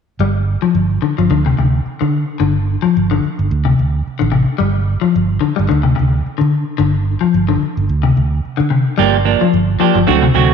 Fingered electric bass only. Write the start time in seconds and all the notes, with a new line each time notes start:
0.19 G1
0.63 muted fingered electric bass stroke
0.75 G1
1.18 G1
1.29 D2
1.58 D2
1.86 muted fingered electric bass stroke
2.02 D3
2.40 G1
2.84 muted fingered electric bass stroke
2.97 G1
3.25 muted fingered electric bass stroke
3.39 G1
3.51 D2
3.79 D2
4.07 muted fingered electric bass stroke
4.21 A1
4.60 G1
5.03 muted fingered electric bass stroke
5.16 G1
5.43 muted fingered electric bass stroke
5.59 G1
5.71 D2
5.99 D2
6.26 muted fingered electric bass stroke
6.41 D3
6.79 G1
7.23 muted fingered electric bass stroke
7.34 G1
7.62 muted fingered electric bass stroke
7.77 G1
7.89 D2
8.17 D2
8.45 muted fingered electric bass stroke
8.60 D3
8.99 G1
9.42 muted fingered electric bass stroke
9.54 G1
9.81 muted fingered electric bass stroke
9.95 G1
10.08 D2
10.34 D2